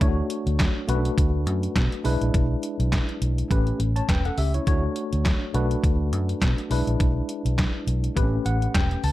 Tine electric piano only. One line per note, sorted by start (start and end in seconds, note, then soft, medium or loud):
0.01 0.87 A3 medium
0.01 0.89 D4 medium
0.01 0.09 E4 medium
0.01 0.89 C#5 medium
0.08 0.88 F#4 medium
0.88 2.02 A3 medium
0.88 0.96 C#4 medium
0.88 2.03 F#4 medium
0.88 2.03 B4 medium
0.95 2.03 D4 medium
2.04 3.47 G#3 medium
2.04 3.47 D4 medium
2.04 3.48 E4 medium
2.04 3.48 B4 medium
3.50 4.64 A3 medium
3.50 4.65 C#4 medium
3.50 3.79 G4 medium
3.50 3.80 B4 medium
3.96 4.08 C#5 medium
3.96 4.08 A5 medium
4.09 4.24 B4 medium
4.09 4.24 G5 medium
4.25 4.38 A4 medium
4.25 4.37 F#5 medium
4.38 4.54 G4 medium
4.38 4.53 E5 medium
4.54 4.82 E4 soft
4.54 4.66 C#5 medium
4.67 5.52 A3 medium
4.67 5.53 D4 medium
4.67 5.53 F#4 medium
4.67 5.55 C#5 medium
5.54 6.68 A3 medium
5.54 6.68 D4 medium
5.54 6.69 F#4 medium
5.54 6.69 B4 medium
6.70 8.13 G#3 medium
6.70 8.13 D4 medium
6.70 8.14 E4 medium
6.70 8.14 B4 medium
8.16 9.12 A3 medium
8.16 8.24 C4 medium
8.16 9.12 G4 medium
8.16 9.12 B4 medium
8.23 9.12 C#4 medium
8.46 8.73 F#5 medium
8.75 9.02 G5 medium
9.04 9.12 A5 medium